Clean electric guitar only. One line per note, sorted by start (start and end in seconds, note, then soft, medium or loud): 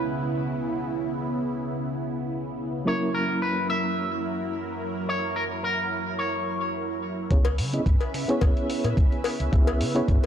0.00 0.32 B4 medium
2.87 3.14 C#5 medium
3.15 3.42 A#4 medium
3.42 3.68 B4 medium
3.70 4.77 E5 medium
5.09 5.37 C#5 loud
5.36 5.44 A#4 medium
5.63 6.21 A#4 medium
6.19 6.98 C#5 medium